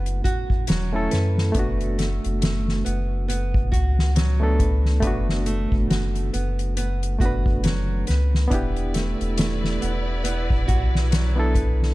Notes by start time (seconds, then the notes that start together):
Already playing: F#1 A3 B3 C#4 E4 F#4
0.06 closed hi-hat
0.24 F#4, kick, closed hi-hat
0.50 kick
0.67 E1 F#3, snare, closed hi-hat
0.93 A3 C#4 E4 A4
1.11 F#2 B4, snare, closed hi-hat
1.38 snare
1.52 F#1 A3 B3, kick, closed hi-hat
1.57 D4 F#4
1.81 closed hi-hat
1.98 A3, snare, closed hi-hat
2.24 F#1, closed hi-hat
2.41 A3, snare, closed hi-hat
2.68 snare
2.85 F#1 B3, closed hi-hat
3.28 B3, closed hi-hat
3.54 kick
3.72 C#2 F#4, kick, closed hi-hat
3.99 snare
4.15 F#3, snare, closed hi-hat
4.40 A3 B3 D4 A4
4.59 B4, kick, closed hi-hat
4.85 snare
5.00 F#1 A3 B3 B4, kick, closed hi-hat
5.05 D4 F#4
5.29 snare
5.46 A3, closed hi-hat
5.72 F#1, kick
5.90 F#4, snare, closed hi-hat
6.15 closed hi-hat
6.33 F#1 B3, closed hi-hat
6.59 closed hi-hat
6.77 B3, closed hi-hat
7.03 closed hi-hat
7.18 F#1 A3 B3 F#4, kick, closed hi-hat
7.23 D4 B4
7.46 kick
7.64 F#3, snare, closed hi-hat
8.07 C#2 B4, snare, closed hi-hat
8.34 snare
8.48 E1 B3 D4, kick, closed hi-hat
8.52 E4 G4 B4 D5
8.76 closed hi-hat
8.94 A3, snare, closed hi-hat
9.21 E1, closed hi-hat
9.37 A3, snare, closed hi-hat
9.64 snare
9.81 E1 B3, closed hi-hat
10.24 B3, closed hi-hat
10.50 kick
10.68 B1 F#4, kick, closed hi-hat
10.95 snare
11.11 F#3, snare, closed hi-hat
11.36 B3 D4 E4 A4
11.54 B4, kick, closed hi-hat
11.82 snare